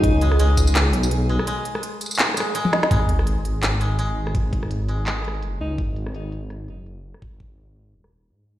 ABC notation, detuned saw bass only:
X:1
M:4/4
L:1/8
Q:"Swing 16ths" 1/4=167
K:G#m
V:1 name="Detuned saw bass" clef=bass
C,,4 C,, B,,,2 z | z8 | G,,,8 | G,,,6 F,,, C,, |
G,,,4 G,,, F,,,2 z | G,,,4 D,,,2 G,,2 |]